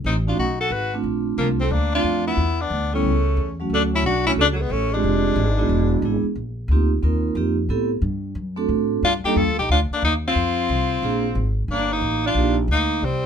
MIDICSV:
0, 0, Header, 1, 6, 480
1, 0, Start_track
1, 0, Tempo, 332594
1, 1521, Time_signature, 4, 2, 24, 8
1, 19135, End_track
2, 0, Start_track
2, 0, Title_t, "Tenor saxophone"
2, 0, Program_c, 0, 66
2, 88, Note_on_c, 0, 63, 70
2, 225, Note_off_c, 0, 63, 0
2, 410, Note_on_c, 0, 65, 73
2, 557, Note_off_c, 0, 65, 0
2, 566, Note_on_c, 0, 66, 89
2, 850, Note_off_c, 0, 66, 0
2, 877, Note_on_c, 0, 69, 91
2, 1041, Note_on_c, 0, 71, 93
2, 1062, Note_off_c, 0, 69, 0
2, 1348, Note_off_c, 0, 71, 0
2, 1993, Note_on_c, 0, 58, 82
2, 2133, Note_off_c, 0, 58, 0
2, 2311, Note_on_c, 0, 60, 82
2, 2482, Note_on_c, 0, 62, 90
2, 2504, Note_off_c, 0, 60, 0
2, 2788, Note_off_c, 0, 62, 0
2, 2812, Note_on_c, 0, 65, 98
2, 3246, Note_off_c, 0, 65, 0
2, 3278, Note_on_c, 0, 64, 93
2, 3767, Note_on_c, 0, 62, 85
2, 3789, Note_off_c, 0, 64, 0
2, 4236, Note_off_c, 0, 62, 0
2, 4255, Note_on_c, 0, 61, 78
2, 5141, Note_off_c, 0, 61, 0
2, 5398, Note_on_c, 0, 62, 86
2, 5526, Note_off_c, 0, 62, 0
2, 5706, Note_on_c, 0, 64, 90
2, 5846, Note_off_c, 0, 64, 0
2, 5860, Note_on_c, 0, 66, 93
2, 6134, Note_off_c, 0, 66, 0
2, 6154, Note_on_c, 0, 64, 87
2, 6229, Note_off_c, 0, 64, 0
2, 6363, Note_on_c, 0, 62, 92
2, 6456, Note_off_c, 0, 62, 0
2, 6569, Note_on_c, 0, 57, 60
2, 6662, Note_on_c, 0, 59, 82
2, 6684, Note_off_c, 0, 57, 0
2, 6817, Note_on_c, 0, 61, 83
2, 6838, Note_off_c, 0, 59, 0
2, 7133, Note_on_c, 0, 62, 88
2, 7155, Note_off_c, 0, 61, 0
2, 9034, Note_off_c, 0, 62, 0
2, 13052, Note_on_c, 0, 65, 100
2, 13186, Note_off_c, 0, 65, 0
2, 13353, Note_on_c, 0, 67, 92
2, 13520, Note_on_c, 0, 69, 99
2, 13542, Note_off_c, 0, 67, 0
2, 13823, Note_off_c, 0, 69, 0
2, 13836, Note_on_c, 0, 67, 96
2, 13988, Note_off_c, 0, 67, 0
2, 14017, Note_on_c, 0, 65, 98
2, 14149, Note_off_c, 0, 65, 0
2, 14334, Note_on_c, 0, 62, 89
2, 14478, Note_off_c, 0, 62, 0
2, 14496, Note_on_c, 0, 63, 91
2, 14629, Note_off_c, 0, 63, 0
2, 14829, Note_on_c, 0, 65, 101
2, 16670, Note_off_c, 0, 65, 0
2, 16898, Note_on_c, 0, 62, 95
2, 17209, Note_on_c, 0, 63, 99
2, 17231, Note_off_c, 0, 62, 0
2, 17677, Note_off_c, 0, 63, 0
2, 17710, Note_on_c, 0, 65, 89
2, 18136, Note_off_c, 0, 65, 0
2, 18352, Note_on_c, 0, 63, 95
2, 18830, Note_on_c, 0, 60, 90
2, 18851, Note_off_c, 0, 63, 0
2, 19135, Note_off_c, 0, 60, 0
2, 19135, End_track
3, 0, Start_track
3, 0, Title_t, "Vibraphone"
3, 0, Program_c, 1, 11
3, 395, Note_on_c, 1, 57, 60
3, 402, Note_on_c, 1, 61, 57
3, 403, Note_on_c, 1, 63, 54
3, 407, Note_on_c, 1, 66, 71
3, 548, Note_off_c, 1, 57, 0
3, 551, Note_off_c, 1, 61, 0
3, 552, Note_off_c, 1, 63, 0
3, 554, Note_off_c, 1, 66, 0
3, 1352, Note_on_c, 1, 60, 61
3, 1355, Note_on_c, 1, 57, 65
3, 1364, Note_on_c, 1, 62, 60
3, 1364, Note_on_c, 1, 65, 71
3, 1968, Note_off_c, 1, 60, 0
3, 1969, Note_off_c, 1, 57, 0
3, 1973, Note_off_c, 1, 65, 0
3, 1974, Note_off_c, 1, 62, 0
3, 2010, Note_on_c, 1, 57, 52
3, 2018, Note_on_c, 1, 62, 46
3, 2021, Note_on_c, 1, 60, 46
3, 2028, Note_on_c, 1, 65, 60
3, 2281, Note_off_c, 1, 57, 0
3, 2286, Note_off_c, 1, 62, 0
3, 2287, Note_off_c, 1, 60, 0
3, 2291, Note_off_c, 1, 65, 0
3, 2780, Note_on_c, 1, 57, 61
3, 2785, Note_on_c, 1, 60, 53
3, 2797, Note_on_c, 1, 65, 66
3, 2804, Note_on_c, 1, 62, 54
3, 3400, Note_off_c, 1, 57, 0
3, 3403, Note_off_c, 1, 60, 0
3, 3409, Note_off_c, 1, 65, 0
3, 3412, Note_off_c, 1, 62, 0
3, 4228, Note_on_c, 1, 55, 60
3, 4229, Note_on_c, 1, 61, 55
3, 4235, Note_on_c, 1, 59, 56
3, 4240, Note_on_c, 1, 64, 71
3, 4381, Note_off_c, 1, 55, 0
3, 4382, Note_off_c, 1, 61, 0
3, 4385, Note_off_c, 1, 59, 0
3, 4387, Note_off_c, 1, 64, 0
3, 5191, Note_on_c, 1, 54, 60
3, 5201, Note_on_c, 1, 57, 52
3, 5206, Note_on_c, 1, 61, 56
3, 5214, Note_on_c, 1, 66, 67
3, 5804, Note_off_c, 1, 54, 0
3, 5809, Note_off_c, 1, 57, 0
3, 5811, Note_off_c, 1, 61, 0
3, 5816, Note_off_c, 1, 66, 0
3, 6130, Note_on_c, 1, 57, 64
3, 6138, Note_on_c, 1, 61, 61
3, 6139, Note_on_c, 1, 62, 61
3, 6139, Note_on_c, 1, 64, 56
3, 6142, Note_on_c, 1, 66, 73
3, 6291, Note_off_c, 1, 57, 0
3, 6295, Note_off_c, 1, 61, 0
3, 6295, Note_off_c, 1, 62, 0
3, 6295, Note_off_c, 1, 64, 0
3, 6297, Note_off_c, 1, 66, 0
3, 7123, Note_on_c, 1, 62, 64
3, 7125, Note_on_c, 1, 56, 66
3, 7125, Note_on_c, 1, 60, 62
3, 7133, Note_on_c, 1, 65, 65
3, 7133, Note_on_c, 1, 67, 76
3, 7729, Note_off_c, 1, 62, 0
3, 7730, Note_off_c, 1, 56, 0
3, 7730, Note_off_c, 1, 60, 0
3, 7734, Note_off_c, 1, 65, 0
3, 7734, Note_off_c, 1, 67, 0
3, 8053, Note_on_c, 1, 62, 64
3, 8056, Note_on_c, 1, 56, 70
3, 8058, Note_on_c, 1, 59, 67
3, 8058, Note_on_c, 1, 64, 69
3, 8071, Note_on_c, 1, 66, 79
3, 8673, Note_off_c, 1, 62, 0
3, 8675, Note_off_c, 1, 56, 0
3, 8676, Note_off_c, 1, 59, 0
3, 8676, Note_off_c, 1, 64, 0
3, 8682, Note_off_c, 1, 66, 0
3, 8728, Note_on_c, 1, 56, 57
3, 8734, Note_on_c, 1, 64, 52
3, 8736, Note_on_c, 1, 59, 54
3, 8736, Note_on_c, 1, 62, 51
3, 8745, Note_on_c, 1, 68, 61
3, 8996, Note_off_c, 1, 56, 0
3, 8999, Note_off_c, 1, 64, 0
3, 9000, Note_off_c, 1, 59, 0
3, 9000, Note_off_c, 1, 62, 0
3, 9004, Note_off_c, 1, 68, 0
3, 9687, Note_on_c, 1, 58, 66
3, 9693, Note_on_c, 1, 60, 62
3, 9693, Note_on_c, 1, 63, 63
3, 9696, Note_on_c, 1, 65, 61
3, 9706, Note_on_c, 1, 67, 72
3, 9955, Note_off_c, 1, 58, 0
3, 9958, Note_off_c, 1, 60, 0
3, 9958, Note_off_c, 1, 63, 0
3, 9959, Note_off_c, 1, 65, 0
3, 9964, Note_off_c, 1, 67, 0
3, 10139, Note_on_c, 1, 58, 59
3, 10146, Note_on_c, 1, 60, 55
3, 10152, Note_on_c, 1, 63, 55
3, 10155, Note_on_c, 1, 65, 54
3, 10161, Note_on_c, 1, 70, 63
3, 10602, Note_off_c, 1, 58, 0
3, 10610, Note_off_c, 1, 60, 0
3, 10613, Note_off_c, 1, 63, 0
3, 10615, Note_off_c, 1, 65, 0
3, 10618, Note_off_c, 1, 70, 0
3, 10619, Note_on_c, 1, 58, 66
3, 10632, Note_on_c, 1, 60, 54
3, 10635, Note_on_c, 1, 63, 55
3, 10638, Note_on_c, 1, 67, 69
3, 10639, Note_on_c, 1, 65, 59
3, 10901, Note_off_c, 1, 58, 0
3, 10907, Note_off_c, 1, 60, 0
3, 10909, Note_off_c, 1, 63, 0
3, 10910, Note_off_c, 1, 67, 0
3, 10911, Note_off_c, 1, 65, 0
3, 11110, Note_on_c, 1, 59, 67
3, 11110, Note_on_c, 1, 60, 58
3, 11113, Note_on_c, 1, 64, 59
3, 11115, Note_on_c, 1, 69, 75
3, 11121, Note_on_c, 1, 67, 64
3, 11386, Note_off_c, 1, 59, 0
3, 11386, Note_off_c, 1, 60, 0
3, 11388, Note_off_c, 1, 64, 0
3, 11389, Note_off_c, 1, 69, 0
3, 11391, Note_off_c, 1, 67, 0
3, 12360, Note_on_c, 1, 57, 68
3, 12361, Note_on_c, 1, 60, 65
3, 12371, Note_on_c, 1, 62, 60
3, 12373, Note_on_c, 1, 69, 73
3, 12376, Note_on_c, 1, 66, 60
3, 12986, Note_off_c, 1, 57, 0
3, 12987, Note_off_c, 1, 60, 0
3, 12992, Note_off_c, 1, 62, 0
3, 12993, Note_off_c, 1, 69, 0
3, 12994, Note_off_c, 1, 66, 0
3, 13338, Note_on_c, 1, 55, 77
3, 13342, Note_on_c, 1, 58, 68
3, 13343, Note_on_c, 1, 62, 70
3, 13343, Note_on_c, 1, 65, 68
3, 13351, Note_on_c, 1, 69, 85
3, 13493, Note_off_c, 1, 55, 0
3, 13495, Note_off_c, 1, 58, 0
3, 13496, Note_off_c, 1, 62, 0
3, 13496, Note_off_c, 1, 65, 0
3, 13499, Note_off_c, 1, 69, 0
3, 15923, Note_on_c, 1, 58, 69
3, 15926, Note_on_c, 1, 62, 63
3, 15928, Note_on_c, 1, 60, 61
3, 15931, Note_on_c, 1, 65, 58
3, 15936, Note_on_c, 1, 68, 74
3, 16195, Note_off_c, 1, 58, 0
3, 16197, Note_off_c, 1, 62, 0
3, 16198, Note_off_c, 1, 60, 0
3, 16199, Note_off_c, 1, 65, 0
3, 16202, Note_off_c, 1, 68, 0
3, 17848, Note_on_c, 1, 62, 56
3, 17848, Note_on_c, 1, 63, 50
3, 17850, Note_on_c, 1, 58, 58
3, 17856, Note_on_c, 1, 65, 55
3, 17860, Note_on_c, 1, 67, 65
3, 18120, Note_off_c, 1, 62, 0
3, 18120, Note_off_c, 1, 63, 0
3, 18121, Note_off_c, 1, 58, 0
3, 18124, Note_off_c, 1, 65, 0
3, 18126, Note_off_c, 1, 67, 0
3, 19135, End_track
4, 0, Start_track
4, 0, Title_t, "Alto saxophone"
4, 0, Program_c, 2, 65
4, 93, Note_on_c, 2, 60, 59
4, 228, Note_off_c, 2, 60, 0
4, 392, Note_on_c, 2, 62, 64
4, 545, Note_off_c, 2, 62, 0
4, 554, Note_on_c, 2, 63, 69
4, 843, Note_off_c, 2, 63, 0
4, 863, Note_on_c, 2, 66, 77
4, 1046, Note_off_c, 2, 66, 0
4, 1046, Note_on_c, 2, 66, 71
4, 1351, Note_off_c, 2, 66, 0
4, 2001, Note_on_c, 2, 53, 64
4, 2139, Note_off_c, 2, 53, 0
4, 2328, Note_on_c, 2, 57, 71
4, 2494, Note_on_c, 2, 58, 77
4, 2516, Note_off_c, 2, 57, 0
4, 2794, Note_off_c, 2, 58, 0
4, 2810, Note_on_c, 2, 62, 87
4, 3245, Note_off_c, 2, 62, 0
4, 3273, Note_on_c, 2, 59, 76
4, 3733, Note_off_c, 2, 59, 0
4, 3733, Note_on_c, 2, 59, 78
4, 4218, Note_off_c, 2, 59, 0
4, 4225, Note_on_c, 2, 57, 70
4, 5126, Note_off_c, 2, 57, 0
4, 5380, Note_on_c, 2, 57, 75
4, 5513, Note_off_c, 2, 57, 0
4, 5683, Note_on_c, 2, 61, 78
4, 5834, Note_off_c, 2, 61, 0
4, 5861, Note_on_c, 2, 62, 74
4, 6134, Note_off_c, 2, 62, 0
4, 6175, Note_on_c, 2, 61, 77
4, 6245, Note_off_c, 2, 61, 0
4, 6321, Note_on_c, 2, 57, 73
4, 6423, Note_off_c, 2, 57, 0
4, 6530, Note_on_c, 2, 54, 54
4, 6630, Note_on_c, 2, 56, 72
4, 6651, Note_off_c, 2, 54, 0
4, 6784, Note_on_c, 2, 57, 74
4, 6806, Note_off_c, 2, 56, 0
4, 7078, Note_on_c, 2, 56, 73
4, 7099, Note_off_c, 2, 57, 0
4, 9007, Note_off_c, 2, 56, 0
4, 13043, Note_on_c, 2, 62, 81
4, 13178, Note_off_c, 2, 62, 0
4, 13366, Note_on_c, 2, 63, 77
4, 13541, Note_on_c, 2, 65, 79
4, 13563, Note_off_c, 2, 63, 0
4, 13833, Note_off_c, 2, 65, 0
4, 13855, Note_on_c, 2, 63, 78
4, 13998, Note_off_c, 2, 63, 0
4, 14025, Note_on_c, 2, 62, 76
4, 14156, Note_off_c, 2, 62, 0
4, 14355, Note_on_c, 2, 58, 75
4, 14489, Note_off_c, 2, 58, 0
4, 14515, Note_on_c, 2, 58, 70
4, 14643, Note_off_c, 2, 58, 0
4, 14828, Note_on_c, 2, 60, 89
4, 16669, Note_off_c, 2, 60, 0
4, 16895, Note_on_c, 2, 58, 81
4, 17201, Note_off_c, 2, 58, 0
4, 17201, Note_on_c, 2, 58, 79
4, 17673, Note_off_c, 2, 58, 0
4, 17689, Note_on_c, 2, 62, 81
4, 18125, Note_off_c, 2, 62, 0
4, 18354, Note_on_c, 2, 58, 73
4, 18809, Note_on_c, 2, 55, 74
4, 18831, Note_off_c, 2, 58, 0
4, 19135, Note_off_c, 2, 55, 0
4, 19135, End_track
5, 0, Start_track
5, 0, Title_t, "Upright bass"
5, 0, Program_c, 3, 32
5, 63, Note_on_c, 3, 33, 82
5, 537, Note_off_c, 3, 33, 0
5, 549, Note_on_c, 3, 35, 78
5, 1006, Note_off_c, 3, 35, 0
5, 1014, Note_on_c, 3, 32, 80
5, 1483, Note_off_c, 3, 32, 0
5, 1492, Note_on_c, 3, 34, 73
5, 1971, Note_off_c, 3, 34, 0
5, 1986, Note_on_c, 3, 36, 85
5, 2446, Note_off_c, 3, 36, 0
5, 2455, Note_on_c, 3, 38, 83
5, 2932, Note_off_c, 3, 38, 0
5, 2938, Note_on_c, 3, 41, 83
5, 3408, Note_off_c, 3, 41, 0
5, 3417, Note_on_c, 3, 40, 76
5, 3892, Note_off_c, 3, 40, 0
5, 3901, Note_on_c, 3, 38, 83
5, 4374, Note_off_c, 3, 38, 0
5, 4382, Note_on_c, 3, 37, 78
5, 4851, Note_off_c, 3, 37, 0
5, 4860, Note_on_c, 3, 40, 82
5, 5325, Note_off_c, 3, 40, 0
5, 5334, Note_on_c, 3, 38, 76
5, 5800, Note_off_c, 3, 38, 0
5, 5809, Note_on_c, 3, 35, 80
5, 6283, Note_off_c, 3, 35, 0
5, 6292, Note_on_c, 3, 37, 82
5, 6767, Note_off_c, 3, 37, 0
5, 6782, Note_on_c, 3, 33, 85
5, 7252, Note_off_c, 3, 33, 0
5, 7266, Note_on_c, 3, 29, 79
5, 7722, Note_off_c, 3, 29, 0
5, 7730, Note_on_c, 3, 32, 93
5, 8206, Note_off_c, 3, 32, 0
5, 8212, Note_on_c, 3, 28, 84
5, 8680, Note_off_c, 3, 28, 0
5, 8689, Note_on_c, 3, 32, 87
5, 8979, Note_off_c, 3, 32, 0
5, 9171, Note_on_c, 3, 34, 78
5, 9632, Note_off_c, 3, 34, 0
5, 9641, Note_on_c, 3, 38, 87
5, 10120, Note_off_c, 3, 38, 0
5, 10140, Note_on_c, 3, 39, 82
5, 10600, Note_off_c, 3, 39, 0
5, 10608, Note_on_c, 3, 41, 90
5, 11084, Note_off_c, 3, 41, 0
5, 11094, Note_on_c, 3, 45, 74
5, 11560, Note_off_c, 3, 45, 0
5, 11568, Note_on_c, 3, 43, 87
5, 12044, Note_off_c, 3, 43, 0
5, 12050, Note_on_c, 3, 42, 81
5, 12525, Note_off_c, 3, 42, 0
5, 12535, Note_on_c, 3, 45, 83
5, 13008, Note_off_c, 3, 45, 0
5, 13024, Note_on_c, 3, 43, 76
5, 13313, Note_off_c, 3, 43, 0
5, 13503, Note_on_c, 3, 41, 81
5, 13663, Note_off_c, 3, 41, 0
5, 13663, Note_on_c, 3, 38, 58
5, 13827, Note_off_c, 3, 38, 0
5, 13836, Note_on_c, 3, 34, 62
5, 13979, Note_off_c, 3, 34, 0
5, 13987, Note_on_c, 3, 38, 85
5, 14275, Note_off_c, 3, 38, 0
5, 14464, Note_on_c, 3, 39, 82
5, 14933, Note_off_c, 3, 39, 0
5, 14942, Note_on_c, 3, 41, 79
5, 15413, Note_off_c, 3, 41, 0
5, 15430, Note_on_c, 3, 36, 92
5, 15897, Note_off_c, 3, 36, 0
5, 15910, Note_on_c, 3, 34, 86
5, 16374, Note_off_c, 3, 34, 0
5, 16383, Note_on_c, 3, 32, 88
5, 16849, Note_off_c, 3, 32, 0
5, 16858, Note_on_c, 3, 31, 79
5, 17330, Note_off_c, 3, 31, 0
5, 17338, Note_on_c, 3, 33, 91
5, 17809, Note_off_c, 3, 33, 0
5, 17817, Note_on_c, 3, 34, 84
5, 18287, Note_off_c, 3, 34, 0
5, 18296, Note_on_c, 3, 38, 88
5, 18774, Note_off_c, 3, 38, 0
5, 18788, Note_on_c, 3, 36, 77
5, 19135, Note_off_c, 3, 36, 0
5, 19135, End_track
6, 0, Start_track
6, 0, Title_t, "Muted upright bass strokes"
6, 8987, Note_on_c, 9, 29, 40
6, 9132, Note_off_c, 9, 29, 0
6, 13335, Note_on_c, 9, 29, 36
6, 13480, Note_off_c, 9, 29, 0
6, 14292, Note_on_c, 9, 29, 41
6, 14436, Note_off_c, 9, 29, 0
6, 19135, End_track
0, 0, End_of_file